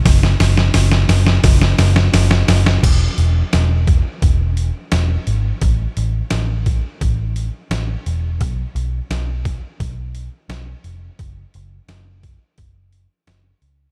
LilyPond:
<<
  \new Staff \with { instrumentName = "Picked electric bass" } { \clef bass \time 4/4 \key a \lydian \tempo 4 = 86 fis,,8 fis,,8 fis,,8 fis,,8 fis,,8 fis,,8 fis,,8 fis,,8 | e,,8 e,,8 e,,4 e,,4 e,,8 gis,,8 | a,,8 a,,8 a,,4 a,,4 a,,8 e,,8 | b,,8 b,,8 b,,4 b,,4 b,,8 f,,8 |
fis,,8 fis,,8 fis,,4 fis,,4 fis,,8 cis,8 | }
  \new DrumStaff \with { instrumentName = "Drums" } \drummode { \time 4/4 <hho bd sn>16 sn16 <hho sn>16 sn16 <hho sn>16 sn16 <hho sn>16 sn16 <hho bd sn>16 sn16 <hho sn>16 sn16 <hho sn>16 sn16 <hho sn>16 sn16 | <cymc hho bd>8 hho8 <hho sn>8 <hho bd>8 <hho bd>8 hho8 <hho sn>8 hho8 | <hho bd>8 hho8 <hho sn>8 <hho bd>8 <hho bd>8 hho8 <hho sn>8 hho8 | <hho bd>8 hho8 <hho sn>8 <hho bd>8 <hho bd>8 hho8 <hho sn>8 hho8 |
<hho bd>8 hho8 <hho sn>8 <hho bd>8 <hho bd>8 hho8 <hho sn>8 hho8 | }
>>